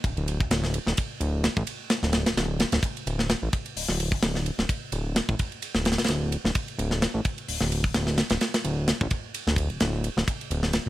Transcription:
0.04 analog synth bass D1, kick, ride
0.17 analog synth bass D1, ride
0.28 ride
0.40 analog synth bass D1, kick
0.51 analog synth bass D1, snare, ride
0.64 snare
0.74 ride
0.86 analog synth bass D1, snare
0.97 kick, ride
1.20 analog synth bass D1, ride
1.44 snare, ride
1.57 analog synth bass A1, kick
1.67 ride
1.90 snare, ride
2.03 analog synth bass D1, snare
2.13 snare, ride
2.26 analog synth bass D1, snare, ride
2.37 analog synth bass D1, snare, ride
2.60 snare, ride
2.72 analog synth bass D1, snare, ride
2.83 kick, ride
2.97 ride
3.06 analog synth bass D1, ride
3.19 snare
3.29 snare, ride
3.42 analog synth bass A1
3.53 kick, ride
3.66 ride
3.76 analog synth bass D1, open hi-hat
3.88 analog synth bass D1, snare
4.00 ride
4.12 analog synth bass D1, kick
4.23 analog synth bass D1, snare, ride
4.35 snare
4.46 ride
4.58 analog synth bass D1, snare
4.69 kick, ride
4.92 analog synth bass D1, ride
5.16 snare, ride
5.29 analog synth bass A1, kick
5.39 kick, ride
5.52 ride
5.62 ride
5.75 analog synth bass D1, snare
5.85 snare, ride
5.92 snare, ride
5.98 analog synth bass D1, snare, ride
6.04 snare, ride
6.08 analog synth bass D1, snare, ride
6.32 ride
6.44 analog synth bass D1, snare
6.55 kick, ride
6.68 ride
6.78 analog synth bass D1, ride
6.91 snare
7.02 snare, ride
7.14 analog synth bass A1
7.25 kick, ride
7.38 ride
7.48 analog synth bass D1, open hi-hat
7.61 analog synth bass D1, snare
7.72 ride
7.84 analog synth bass D1, kick
7.94 analog synth bass D1, snare, ride
8.07 snare
8.18 snare, ride
8.30 analog synth bass D1, snare, ride
8.41 snare, ride
8.54 snare, ride
8.64 analog synth bass D1, ride
8.88 snare, ride
9.01 analog synth bass A1, kick
9.10 kick, ride
9.34 ride
9.47 analog synth bass D1, snare
9.56 kick, ride
9.70 analog synth bass D1, ride
9.80 analog synth bass D1, snare, ride
10.04 ride
10.17 analog synth bass D1, snare
10.28 kick, ride
10.41 ride
10.51 analog synth bass D1, ride
10.63 snare
10.73 snare, ride

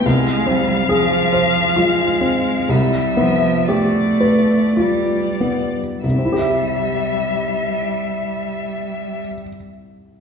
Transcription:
0.05 grand piano C2, cello G#3, violin F5
0.46 cello G3, grand piano C4
0.89 cello F3, grand piano G#4
1.33 grand piano C5
1.76 cello G#3, grand piano F4
2.21 grand piano C4
2.69 grand piano C2, cello G3, violin E5
3.17 cello F3, grand piano B3
3.69 cello A3, grand piano G4, violin D5
4.21 grand piano B4
4.77 cello G3, grand piano F4, violin D5
5.41 grand piano B3
6.03 grand piano C2, cello G3, violin E5
6.11 grand piano C3
6.18 grand piano C4
6.25 grand piano E4
6.32 grand piano G4
6.39 grand piano E5

